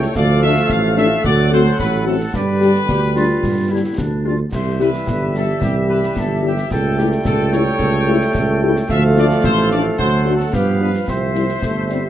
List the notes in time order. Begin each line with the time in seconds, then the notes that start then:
Already playing: G3 A3 A4 C#5 G5
0.02 snare
0.15 D2 F3 A3 A4 D5 F5, concert bass drum, snare, crash
0.42 A3 D4 F4 E5, snare
0.56 snare
0.69 A1 F5, concert bass drum, snare
0.97 A3 D4 F4 E5, snare
1.24 D2 F#3 D5 F#5, concert bass drum, snare
1.51 A3 C4 F#4 C5
1.66 snare
1.79 A1 B4, concert bass drum, snare
2.05 A3 C4 F#4 A4
2.20 snare
2.34 G2 D3 G3 G4 B4 D5, concert bass drum, snare
2.61 G3 D4 G4, snare
2.75 snare
2.88 D2 G4, concert bass drum, snare
3.14 G3 D4 F4 G4, snare
3.43 G2, concert bass drum, snare
3.70 G3 D4 E4 G4
3.97 D2 D4, concert bass drum, snare
4.25 G3 D4 F4 G4
4.52 C2 E3 G3 G4 C5 E5, concert bass drum, snare, crash
4.80 G3 E4 G4 B4, snare
4.94 snare
5.07 G1, concert bass drum, snare
5.34 G3 E4 G4 A4, snare
5.61 C2 G4, concert bass drum, snare
5.88 G3 E4 G4 B4
6.03 snare
6.15 G1 A4, concert bass drum, snare
6.43 G3 E4 G4
6.57 snare
6.70 C#2 G3 A3 A4 G5, concert bass drum, snare
6.97 A3 E4 G4, snare
7.12 snare
7.25 C#2 A4, concert bass drum, snare
7.53 A3 E4 G4 C#5, snare
7.79 C#2, concert bass drum, snare
8.07 A3 E4 G4
8.21 snare
8.34 C#2, concert bass drum, snare
8.62 A3 E4 G4
8.76 snare
8.88 D2 F3 A3 A4 E5 F5, concert bass drum, snare, crash
9.17 A3 D4 F4 D5, snare
9.31 snare
9.43 A1 C5, concert bass drum, snare
9.71 A3 D4 F4 D5, snare
9.97 D2 F#3 C5 F#5, concert bass drum, snare
10.25 A3 D4 F#4
10.36 A4
10.40 snare
10.53 G2 F3 B3 G4 B4 F5, concert bass drum, snare
10.80 B3 D4 F4 B4
10.94 snare
11.07 C2 C4 C5 E5, concert bass drum, snare
11.35 G3 C4 E4, snare
11.49 snare
11.62 G1 A3, concert bass drum, snare
11.89 G3 C4 E4, snare